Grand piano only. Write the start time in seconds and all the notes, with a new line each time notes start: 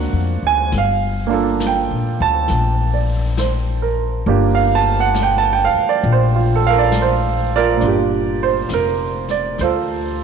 Already playing: A#3 C4 D4 F#4 F5 F#5
0.47 G#5
0.78 F5
1.27 A#3 D4 F4
1.33 A4
1.67 G5
2.22 A5
2.94 D5
3.39 C5
3.82 A#4
4.27 A#3 D4 F4 G4
4.55 F5
4.75 A5
5.00 F#5
5.23 G5
5.38 A5
5.53 G5
5.65 F5
5.89 D5
6.12 C5
6.36 F4
6.55 A4
6.67 A4 A#4 F5
6.79 D5
7.02 C5
7.56 F4 A#4 D5
7.77 A#2 D4
7.85 F4 G4
8.43 C5
8.74 A#4
9.31 D5
9.61 F4 A4 C5